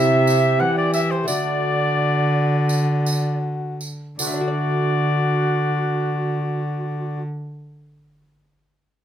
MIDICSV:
0, 0, Header, 1, 7, 480
1, 0, Start_track
1, 0, Tempo, 679502
1, 900, Time_signature, 4, 2, 24, 8
1, 1392, Tempo, 728155
1, 2352, Tempo, 771208
1, 5851, End_track
2, 0, Start_track
2, 0, Title_t, "Oboe"
2, 0, Program_c, 0, 68
2, 0, Note_on_c, 0, 76, 99
2, 427, Note_on_c, 0, 78, 108
2, 437, Note_off_c, 0, 76, 0
2, 542, Note_off_c, 0, 78, 0
2, 550, Note_on_c, 0, 74, 87
2, 657, Note_off_c, 0, 74, 0
2, 662, Note_on_c, 0, 76, 94
2, 784, Note_on_c, 0, 72, 81
2, 794, Note_off_c, 0, 76, 0
2, 899, Note_off_c, 0, 72, 0
2, 903, Note_on_c, 0, 74, 98
2, 2327, Note_off_c, 0, 74, 0
2, 2825, Note_on_c, 0, 74, 93
2, 4704, Note_off_c, 0, 74, 0
2, 5851, End_track
3, 0, Start_track
3, 0, Title_t, "Recorder"
3, 0, Program_c, 1, 74
3, 0, Note_on_c, 1, 76, 95
3, 423, Note_on_c, 1, 78, 84
3, 433, Note_off_c, 1, 76, 0
3, 535, Note_off_c, 1, 78, 0
3, 539, Note_on_c, 1, 74, 72
3, 656, Note_off_c, 1, 74, 0
3, 668, Note_on_c, 1, 76, 72
3, 710, Note_off_c, 1, 76, 0
3, 786, Note_on_c, 1, 72, 70
3, 828, Note_off_c, 1, 72, 0
3, 899, Note_on_c, 1, 74, 83
3, 2325, Note_off_c, 1, 74, 0
3, 2830, Note_on_c, 1, 66, 75
3, 4709, Note_off_c, 1, 66, 0
3, 5851, End_track
4, 0, Start_track
4, 0, Title_t, "Bassoon"
4, 0, Program_c, 2, 70
4, 0, Note_on_c, 2, 67, 73
4, 899, Note_off_c, 2, 67, 0
4, 904, Note_on_c, 2, 66, 69
4, 2566, Note_off_c, 2, 66, 0
4, 2831, Note_on_c, 2, 66, 68
4, 4711, Note_off_c, 2, 66, 0
4, 5851, End_track
5, 0, Start_track
5, 0, Title_t, "Lute"
5, 0, Program_c, 3, 24
5, 0, Note_on_c, 3, 48, 63
5, 0, Note_on_c, 3, 60, 53
5, 0, Note_on_c, 3, 64, 54
5, 0, Note_on_c, 3, 67, 57
5, 393, Note_off_c, 3, 48, 0
5, 421, Note_on_c, 3, 52, 60
5, 859, Note_off_c, 3, 60, 0
5, 864, Note_off_c, 3, 64, 0
5, 867, Note_off_c, 3, 67, 0
5, 872, Note_off_c, 3, 52, 0
5, 873, Note_on_c, 3, 57, 48
5, 884, Note_on_c, 3, 66, 47
5, 902, Note_on_c, 3, 50, 55
5, 2652, Note_off_c, 3, 50, 0
5, 2792, Note_off_c, 3, 57, 0
5, 2798, Note_off_c, 3, 66, 0
5, 2831, Note_on_c, 3, 50, 55
5, 2874, Note_on_c, 3, 57, 58
5, 2919, Note_on_c, 3, 62, 58
5, 2961, Note_on_c, 3, 66, 57
5, 3005, Note_on_c, 3, 74, 56
5, 4711, Note_off_c, 3, 50, 0
5, 4754, Note_off_c, 3, 57, 0
5, 4799, Note_off_c, 3, 62, 0
5, 4841, Note_off_c, 3, 66, 0
5, 4885, Note_off_c, 3, 74, 0
5, 5851, End_track
6, 0, Start_track
6, 0, Title_t, "Cello"
6, 0, Program_c, 4, 42
6, 0, Note_on_c, 4, 48, 80
6, 425, Note_on_c, 4, 52, 70
6, 436, Note_off_c, 4, 48, 0
6, 901, Note_on_c, 4, 50, 74
6, 911, Note_off_c, 4, 52, 0
6, 2676, Note_off_c, 4, 50, 0
6, 2828, Note_on_c, 4, 50, 74
6, 4707, Note_off_c, 4, 50, 0
6, 5851, End_track
7, 0, Start_track
7, 0, Title_t, "Drums"
7, 193, Note_on_c, 9, 54, 52
7, 264, Note_off_c, 9, 54, 0
7, 661, Note_on_c, 9, 54, 53
7, 731, Note_off_c, 9, 54, 0
7, 902, Note_on_c, 9, 54, 81
7, 972, Note_off_c, 9, 54, 0
7, 1868, Note_on_c, 9, 54, 50
7, 1934, Note_off_c, 9, 54, 0
7, 2113, Note_on_c, 9, 54, 54
7, 2179, Note_off_c, 9, 54, 0
7, 2588, Note_on_c, 9, 54, 48
7, 2650, Note_off_c, 9, 54, 0
7, 2826, Note_on_c, 9, 54, 86
7, 2889, Note_off_c, 9, 54, 0
7, 5851, End_track
0, 0, End_of_file